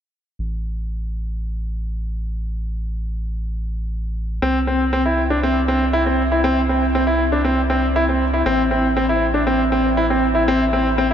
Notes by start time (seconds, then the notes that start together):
0.39 A1
4.42 C2 C4
4.67 C4
4.93 C4
5.06 E4
5.30 D4
5.43 C4
5.68 C4
5.93 E4
6.06 C4
6.32 E4
6.44 C4
6.69 C4
6.95 C4
7.07 E4
7.32 D4
7.45 C4
7.70 C4
7.96 E4
8.09 C4
8.34 E4
8.46 A1 C4
8.71 C4
8.97 C4
9.09 E4
9.34 D4
9.47 C4
9.72 C4
9.97 E4
10.10 C4
10.35 E4
10.48 C4
10.73 C4
10.98 C4